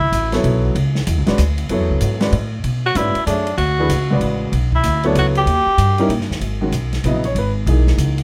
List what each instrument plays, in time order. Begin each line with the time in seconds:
Already playing: upright bass C#2, tenor saxophone E4
0.01 kick
0.12 upright bass A1, hi-hat pedal, ride
0.32 upright piano F#3 B3 E4 A4 C#5, snare, ride
0.44 upright bass B1, ride
0.75 upright bass C#2, ride
0.95 snare
1.07 upright bass E2, hi-hat pedal, ride
1.18 upright bass C#2
1.26 upright bass A1, upright piano G#3 C#4 F#4 B4 D5, snare, ride
1.38 upright bass D2, hi-hat pedal, ride
1.58 ride
1.69 upright bass F#2, upright piano F#3 B3 E4 A4 C#5, ride
1.80 upright bass E2
1.90 upright bass C#2
2.01 upright bass G#2, hi-hat pedal, ride
2.20 upright piano G#3 C#4 F#4 B4 D5, snare, ride
2.32 upright bass A2, ride
2.64 upright bass B2, ride
2.86 tenor saxophone F#4
2.95 upright bass G#2, upright piano G#3 C#4 F#4 B4 D5, tenor saxophone E4, hi-hat pedal, ride
3.15 muted upright bass stroke, ride
3.26 upright bass F#2, upright piano A3 D4 G#4 C#5 E5, tenor saxophone D4, hi-hat pedal, ride
3.47 ride
3.58 upright bass D2, tenor saxophone F#4, ride
3.79 upright piano E3 A3 D4 G#4 B4
3.89 upright bass C#2, hi-hat pedal, ride
4.10 upright piano C#3 G#3 F#4 B4 D5
4.20 upright bass A1, ride
4.52 upright bass B1, ride
4.72 tenor saxophone E4, kick
4.83 upright bass D2, hi-hat pedal, ride
5.03 upright piano F#3 B3 E4 A4 C#5, tenor saxophone D4, ride
5.15 upright bass C#2, tenor saxophone F#4, hi-hat pedal, ride
5.35 tenor saxophone G4, ride
5.46 upright bass D#2, ride
5.66 muted upright bass stroke
5.78 upright bass G2, hi-hat pedal, ride
5.98 upright piano G3 C#4 D#4 E4 A#4, ride
6.09 upright bass A#2, ride
6.20 upright bass G2, snare
6.30 upright bass D#2, snare
6.40 upright bass G#1, ride
6.61 upright piano D#3 G#3 C#4 F#4
6.72 upright bass B1, hi-hat pedal, ride
6.93 snare, ride
7.04 upright bass A#1, upright piano C#3 F#3 B3 E4 D#5, hi-hat pedal, ride
7.24 upright piano C#5, ride
7.35 upright bass G#1, upright piano B4, ride
7.66 upright bass B1, upright piano E3 A#3 D#4 G#4, ride
7.87 snare
7.98 upright bass C#2, hi-hat pedal, ride
8.18 ride